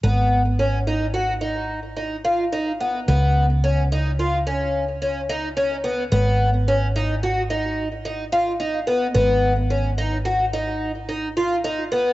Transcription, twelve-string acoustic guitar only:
X:1
M:11/8
L:1/8
Q:1/4=109
K:G#dor
V:1 name="Twelve-string acoustic guitar"
B,2 C D F D2 D E D B, | B,2 C D E C2 C D C B, | B,2 C D F D2 D E D B, | B,2 C D F D2 D E D B, |]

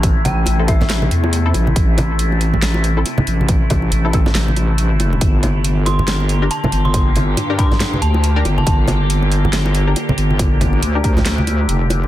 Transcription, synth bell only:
X:1
M:4/4
L:1/16
Q:"Swing 16ths" 1/4=139
K:Gdor
V:1 name="Synth bell"
z2 g3 z e4 z6 | z16 | z16 | z6 c'3 z3 a3 c'- |
c'2 z4 c'3 z a3 z2 a- | a3 z12 z | z16 |]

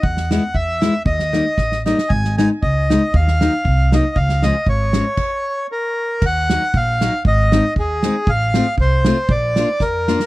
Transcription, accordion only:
X:1
M:2/4
L:1/8
Q:"Swing" 1/4=117
K:D#m
V:1 name="Accordion"
f f =e2 | d3 d | g g d2 | e3 d |
e d c2- | c2 A2 | [K:Ebm] g2 f2 | e2 A2 |
f2 =c2 | =d2 B2 |]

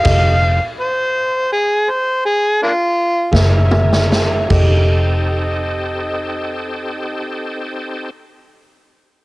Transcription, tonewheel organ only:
X:1
M:12/8
L:1/8
Q:3/8=50
K:Fmix
V:1 name="Tonewheel organ"
[CEGA]2 z6 z [_D_F_AB]3 | [B,_D=EG] [C_EGA]8- [CEGA]3 |]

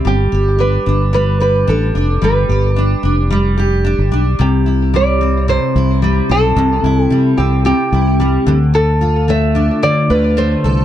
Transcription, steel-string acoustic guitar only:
X:1
M:4/4
L:1/8
Q:1/4=110
K:C
V:1 name="Steel-string acoustic guitar"
G, G D D G, G D D | G, G D D G, G D D | C, E G, C C, E G, c | C, E G, C C, E G, D, |
D, F A, D D, F A, A |]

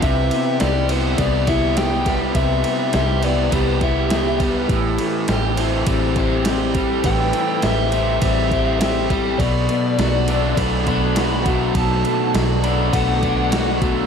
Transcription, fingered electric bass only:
X:1
M:4/4
L:1/8
Q:1/4=102
K:C
V:1 name="Fingered electric bass" clef=bass
C,, z C,,2 C,,4 | C,, z C,,2 C,,4 | A,,, z A,,,2 A,,,4 | A,,, z A,,,2 A,,,4 |
B,,, z B,,,2 B,,,4 | B,,, z B,,,2 B,,,4 |]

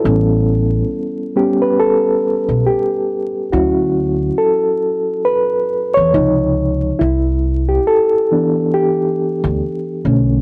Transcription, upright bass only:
X:1
M:4/4
L:1/16
Q:"Swing 16ths" 1/4=69
K:Amix
V:1 name="Upright bass" clef=bass
A,,,4 z6 z B,,, z4 | D,,4 z6 z E,, C,,4 | =C,,4 z6 z D,, z2 B,,,2 |]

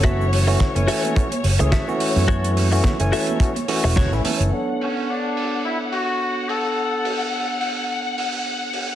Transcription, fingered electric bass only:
X:1
M:4/4
L:1/16
Q:"Swing 16ths" 1/4=107
K:Bdor
V:1 name="Fingered electric bass" clef=bass
F,,,4 z F,,, z4 F,,, C,, z3 F,,- | F,,4 z F,,, z4 z E,,,2 A,,, z F,,, | z16 | z16 |]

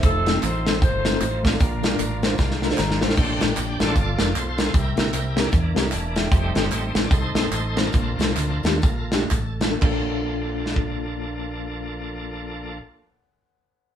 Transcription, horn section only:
X:1
M:4/4
L:1/8
Q:"Swing" 1/4=153
K:Bb
V:1 name="Horn section"
[CEA]2 [EAc]2 [EAc]3 [DFB]- | [DFB]6 z2 | z8 | z8 |
z8 | z8 | z8 | z8 |]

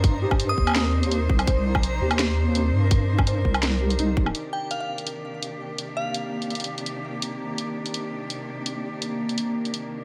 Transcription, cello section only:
X:1
M:4/4
L:1/8
Q:1/4=167
K:Cm
V:1 name="Cello section"
[C,DEc]8- | [C,DEc]8- | [C,DEc]8 | [C,E,DG]8- |
[C,E,DG]8- | [C,E,DG]8- | [C,E,DG]8 |]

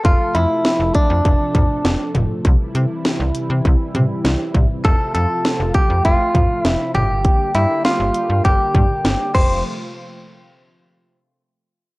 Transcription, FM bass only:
X:1
M:4/4
L:1/16
Q:1/4=100
K:F
V:1 name="FM bass" clef=bass
F,,, z F,, z2 F,,, z F,, F,,, z F,, z F,,, z F,,, z | C,, z C, z2 C,, z C, C,, z C, z C,, z C,, z | F,,, z F,, z2 F,,, z F,, F,,, z F,, z F,,, z G,,,2- | G,,, z G,, z2 G,,, z G,, G,,, z G,, z G,,, z F,,,2 |
z16 |]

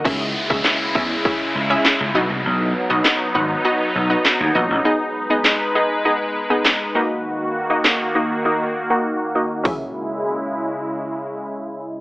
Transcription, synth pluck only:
X:1
M:4/4
L:1/16
Q:1/4=100
K:C#dor
V:1 name="Synth pluck"
[CEGe]2 z [CEGe]2 z [CEGe]2 [CEGe]2 z [CEGe]2 z [B,DFd]2- | [B,DFd]2 z [B,DFd]2 z [B,DFf]2 [B,DFd]2 z [B,DFd]2 z [B,DFd]2 | [B,DGd]2 z [B,DGd]2 z [B,DGd]2 [B,DGd]2 z [B,DGd]2 z [A,DFd]2- | [A,DFd]2 z [A,DFd]2 z [A,DFd]2 [A,DFd]2 z [A,DFf]2 z [A,DFd]2 |
[CEGe]16 |]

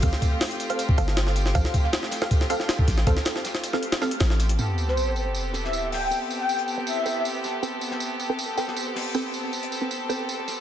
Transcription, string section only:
X:1
M:4/4
L:1/8
Q:1/4=158
K:Am
V:1 name="String section"
[A,CFG]8- | [A,CFG]8- | [A,CFG]8 | [B,CGA]8- |
[B,CGA]8- | [B,CGA]8- | [B,CGA]8 |]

